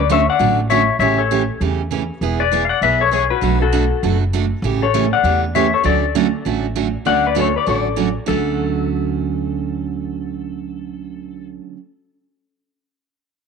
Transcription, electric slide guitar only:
0.00 D5
0.12 C#5 E5
0.29 D5 F#5
0.70 C#5 E5
1.00 C#5 E5
1.18 A4 C#5
2.40 B4 D5
2.65 F5
2.69 D5 F#5
2.83 B4 E5
3.01 A4 C#5
3.13 G#4 C#5
3.30 F#4 B4
3.62 F#4 A4
4.82 A4 C#5
5.13 D5 F#5
5.55 C#5 E5
5.74 A4 C#5
5.86 A4 D5
7.06 D5 F#5
7.27 B4 D5
7.39 A4 C#5
7.56 B4 D5
7.68 A4 D5
8.28 A4

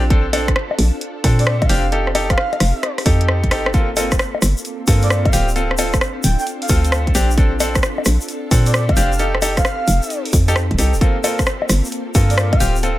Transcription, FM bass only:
Already playing: A#1
0.79 A#1
1.24 A#2
1.70 F1
2.60 F1
3.06 F2
3.51 G1
4.42 G1
4.88 G2
5.33 D1
6.24 D1
6.69 D2
7.15 A#1
8.06 A#1
8.51 A#2
8.97 F1
9.88 F1
10.33 F2
10.71 D#1
10.78 C2
10.94 D#1
11.69 G1
12.15 G2
12.60 D1

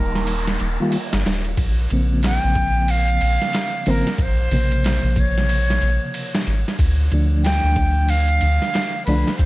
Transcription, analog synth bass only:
Already playing: D#1
0.61 D#1
1.13 G1
1.26 D#1
1.58 A#1
1.91 A#1
2.44 A#1
3.22 A#1
3.87 G#1
4.19 A#1
4.51 A#1
5.03 A#1
5.82 A#1
6.47 G#1
6.79 D2
7.12 D2
7.64 D2
8.42 D2
9.07 C2
9.40 D2

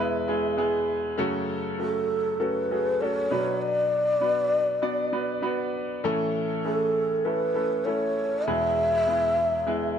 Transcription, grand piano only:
Already playing: E2 B2 G#3 F#4 G#4
0.00 B3 E4 B4
0.28 G#3 B3 E4 G#4
0.57 G#3 B3 E4 G#4
1.18 F#2 C#3 A3 C#4 F#4 A4
1.79 A3 C#4 F#4 A4
2.40 A3 C#4 F#4 A4
2.71 A3 C#4 F#4 G#4
3.01 A3 C#4 F#4 A4
3.31 B2 F#3 B3 D4 F#4 B4
4.21 B3 D4 F#4 B4
4.82 B3 D4 F#4 D5
5.12 B3 D4 F#4 B4
5.42 B3 D4 F#4 B4
6.04 A2 E3 A3 C#4 E4 A4
6.65 A3 C#4 E4 G#4
6.72 A4
7.25 A3 C#4 E4 A4
7.54 A3 C#4 E4 A4
7.86 A3 C#4 E4 A4
8.47 E2 B2 G#3 B3 E4 G#4
9.07 G#3 B3 E4 G#4
9.67 G#3 B3 E4 G#4

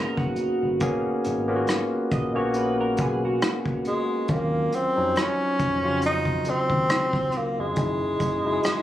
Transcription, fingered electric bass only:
0.18 F#1
0.62 G1
1.26 G#1
2.12 A#1
2.99 B1
4.30 D#2
4.98 F2
5.61 F2
6.48 muted fingered electric bass stroke
6.70 D#2
6.92 muted fingered electric bass stroke
7.14 C#2
7.59 F1
7.78 F#1
8.21 F#1

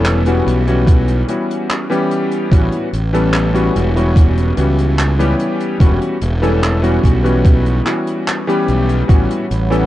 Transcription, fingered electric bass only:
Already playing: E1
0.47 B1
2.52 A1
2.93 A1
3.76 E1
4.57 C#2
5.80 E1
6.22 E1
7.04 B1
8.68 B1
9.09 A1
9.51 A1

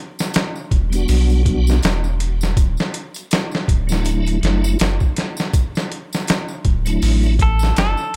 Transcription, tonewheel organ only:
0.90 G3 B3 D4
0.95 F#4
1.43 G3 B3 D4
1.48 F#4
3.87 F#3 A3 D4
3.92 E4
4.41 F#3 A3 D4
4.46 E4
6.85 F#3 A3 D4
6.90 E4

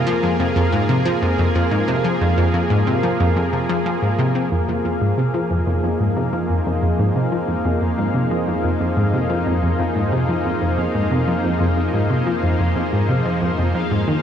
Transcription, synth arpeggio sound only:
0.07 F3
0.23 F2
0.40 F2
0.56 F2
0.73 G#2
0.89 C3
1.05 F3
1.22 F2
1.38 F2
1.55 F2
1.71 G#2
1.88 C3
2.04 F3
2.21 F2
2.37 F2
2.54 F2
2.70 G#2
2.87 C3
3.03 F3
3.20 F2
3.36 F2
3.53 C3
3.69 F3
3.86 F3
4.02 G#2
4.19 C3
4.35 C4
4.52 F2
4.68 F2
4.85 F2
5.01 G#2
5.18 C3
5.34 F3
5.51 F2
5.67 F2
5.84 F2
6.00 G#2
6.17 C3
6.33 F3
6.50 F2
6.66 F2
6.82 F2
6.99 G#2
7.15 C3
7.32 F3
7.48 F2
7.65 F2
7.82 F2
7.98 G#2
8.15 C3
8.31 F3
8.47 F2
8.64 F2
8.80 F2
8.97 G#2
9.13 C3
9.30 F3
9.46 F2
9.63 F2
9.79 F2
9.96 G#2
10.12 C3
10.29 F3
10.45 F2
10.62 F2
10.78 F2
10.95 G#2
11.11 C3
11.28 F3
11.44 F2
11.61 F2
11.77 F2
11.94 G#2
12.10 C3
12.27 F3
12.43 F2
12.60 F2
12.76 F2
12.93 G#2
13.09 C3
13.25 F3
13.42 F2
13.58 F2
13.75 F2
13.91 G#2
14.08 D#3

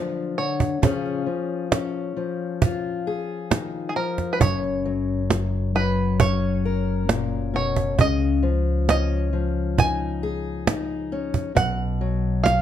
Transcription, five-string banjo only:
Already playing: D5
0.38 C#5
3.89 G#4
3.96 A#4
4.33 B4
4.41 C#5
5.76 B4
6.20 C#5
7.56 C#5
8.01 D#5
8.90 D#5
9.80 G#5
11.57 F#5
12.44 F5

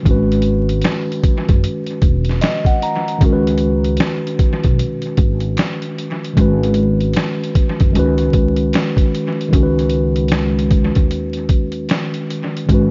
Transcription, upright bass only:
0.06 G#1
1.49 F#1
2.02 E1
3.22 C#2
4.65 B1
5.18 G#1
6.38 G#1
7.81 F#1
7.95 C#2
8.34 C#2
9.53 C#2
10.97 D#2
12.69 G#1

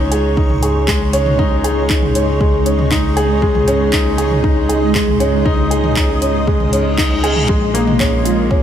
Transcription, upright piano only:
Already playing: G#3 C#4 D#4
0.11 G#4
0.37 D#4
0.62 G#4
0.88 G#3
1.13 C#4
1.39 D#4
1.64 G#4
1.90 D#4
2.15 C#4
2.40 G#3
2.66 C#4
2.91 D#4
3.17 G#4
3.42 G#3
3.67 C#4
3.93 D#4
4.18 G#4
4.44 D#4
4.69 G#4
4.94 G#3
5.20 C#4
5.45 D#4
5.71 G#4
5.96 D#4
6.22 C#4
6.47 G#3
6.73 C#4
6.98 D#4
7.24 G#4
7.49 G#3
7.74 A#3
8.00 C#4
8.25 F4
8.50 C#4

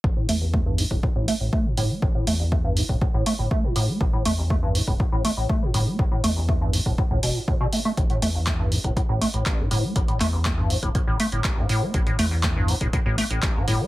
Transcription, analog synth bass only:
0.04 A1
0.29 E2
0.91 E1
1.16 A1
1.40 A1
1.78 G1
2.02 A1
2.27 E2
2.89 E1
3.14 A1
3.39 G1
3.64 A1
4.01 A1
4.26 E2
4.88 E1
5.12 A1
5.37 A1
5.74 G1
5.99 A1
6.24 E2
6.86 E1
7.11 C#2
7.23 E1
7.97 A1
8.22 E2
8.84 E1
9.09 A1
9.34 A1
9.71 G1
9.96 A1
10.21 E2
10.83 E1
11.08 A1
11.32 G1
11.57 A1
11.94 A1
12.19 E2
12.81 E1
13.06 A1
13.31 A1
13.68 G1

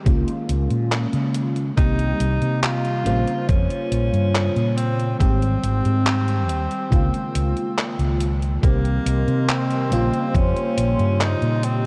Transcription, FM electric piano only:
0.05 D#3 G#3 A#3 C#4 F4
1.77 D#3 G3 A#3 C4 G4
3.04 C#3 G3 A#3 F4 C5
5.19 D#3 G3 G#3 C4 G4
6.90 C#3 D#3 G#3 A#3 F4
8.62 D#3 G3 A#3 C4 G4
9.90 C#3 G3 A#3 F4 C5

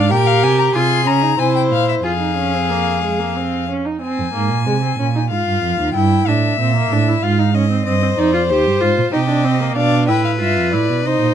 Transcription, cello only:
Already playing: G#2
0.12 A#2
0.43 C3
0.75 C3
1.07 C#3
1.39 C3
1.72 A#2
2.05 F2
4.19 F2
4.35 G#2
4.50 A#2
4.66 C3
4.99 A#2
5.31 G#2
5.47 G2
5.63 F2
5.79 D#2
5.95 G2
6.27 A2
6.59 A#2
6.91 A2
7.23 G#2
7.87 G2
8.19 F2
8.50 D#2
8.66 G2
8.82 G#2
8.98 A#2
9.13 C3
9.76 B2
10.09 A2
10.41 G2
10.57 F2
10.73 A2
10.89 B2
11.05 C3
11.21 A#2

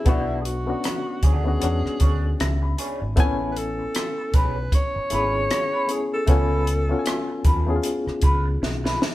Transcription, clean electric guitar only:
0.05 F#4 A4 D5
0.67 muted clean electric guitar stroke
1.07 muted clean electric guitar stroke
1.23 F#4 A4 D5
1.45 muted clean electric guitar stroke
1.62 muted clean electric guitar stroke
1.85 muted clean electric guitar stroke
2.00 D4 G#4 C#5
2.23 muted clean electric guitar stroke
2.62 muted clean electric guitar stroke
2.78 D4 G#4 C#5
3.00 muted clean electric guitar stroke
3.17 C#4 G#4 B4
3.79 muted clean electric guitar stroke
4.18 muted clean electric guitar stroke
4.34 C#4 G#4 B4
4.57 muted clean electric guitar stroke
4.73 muted clean electric guitar stroke
4.95 muted clean electric guitar stroke
5.11 C#4 G#4 B4
5.34 muted clean electric guitar stroke
5.50 muted clean electric guitar stroke
5.73 C#4 G#4 B4
5.89 muted clean electric guitar stroke
6.12 muted clean electric guitar stroke
6.28 F4 A4 B4
6.89 muted clean electric guitar stroke
7.28 muted clean electric guitar stroke
7.45 F4 A4 B4
7.67 muted clean electric guitar stroke
7.84 muted clean electric guitar stroke
8.06 muted clean electric guitar stroke
8.23 F4 A4 B4
8.46 muted clean electric guitar stroke
8.62 muted clean electric guitar stroke
8.84 F4 A4 B4
9.00 muted clean electric guitar stroke

